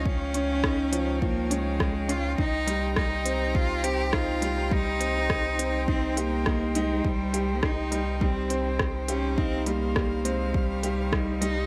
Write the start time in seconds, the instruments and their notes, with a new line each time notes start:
Already playing: sub bass C#2, grand piano F3 C#4 D#4, string quartet D#4 C#5 F5
0.05 cello C#4, string quartet G5, kick
0.34 grand piano C#4, closed hi-hat
0.63 grand piano D#4, kick, cross-stick
0.92 grand piano F3, closed hi-hat
1.21 grand piano F3, cello A#3, kick
1.50 cello G#3, grand piano C#4, closed hi-hat
1.80 kick, cross-stick
2.08 grand piano C#4, cello F4, closed hi-hat
2.38 sub bass C2, grand piano D#4, cello D#4, string quartet C5 A#5, kick
2.67 grand piano G3, closed hi-hat
2.96 grand piano G3, cello D#4, kick, cross-stick
3.25 grand piano C4, closed hi-hat
3.55 cello F4, kick
3.84 grand piano C4, cello G4, closed hi-hat
4.12 grand piano D#4, cello F4, kick, cross-stick
4.42 grand piano G3, closed hi-hat
4.71 grand piano G3, cello D#4, kick
5.00 grand piano C4, closed hi-hat
5.30 kick, cross-stick
5.59 grand piano C4, closed hi-hat
5.88 cello C4, grand piano D#4, kick
6.17 cello A#3, grand piano G4, closed hi-hat
6.46 grand piano D#4, kick, cross-stick
6.75 cello G#3, grand piano D#4, closed hi-hat
7.05 sub bass C2, cello G3, kick
7.33 grand piano G4, closed hi-hat
7.63 grand piano D#4, cello D#4, kick, cross-stick
7.92 grand piano G3, closed hi-hat
8.21 grand piano G3, cello C4, kick
8.50 grand piano C4, closed hi-hat
8.79 kick, cross-stick
9.08 cello C#4, grand piano G4, closed hi-hat
9.37 cello C4, grand piano D#4, string quartet F5, kick
9.66 grand piano G3, cello A#3, closed hi-hat
9.96 grand piano G3, kick, cross-stick
10.25 cello G#3, grand piano C4, closed hi-hat
10.54 cello G3, kick
10.83 grand piano G4, closed hi-hat
11.12 grand piano D#4, kick, cross-stick
11.41 grand piano G3, cello D#4, closed hi-hat